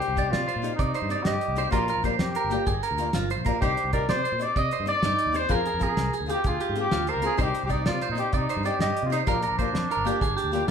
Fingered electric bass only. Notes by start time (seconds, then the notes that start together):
0.08 C2
0.32 C3
0.56 A#2
0.79 C3
1.02 G2
1.25 G2
1.48 C2
1.72 A#1
1.97 A#1
2.19 F2
2.44 G1
2.67 G1
2.91 D2
3.14 G1
3.36 A#1
3.62 C2
3.84 C2
4.09 C3
4.32 A#2
4.56 C3
4.80 G2
5.02 G2
5.26 D#2
5.49 F2
5.74 F2
5.97 C2
6.20 D2
6.45 D2
6.69 G#2
6.92 D2
7.15 C#2
7.39 C2
7.63 C2
7.87 C3
8.09 A#2
8.33 C3
8.56 G2
8.79 G2
9.03 C3
9.28 A#1
9.51 A#1
9.73 F2
9.97 G1
10.22 G1
10.44 D2
10.67 G1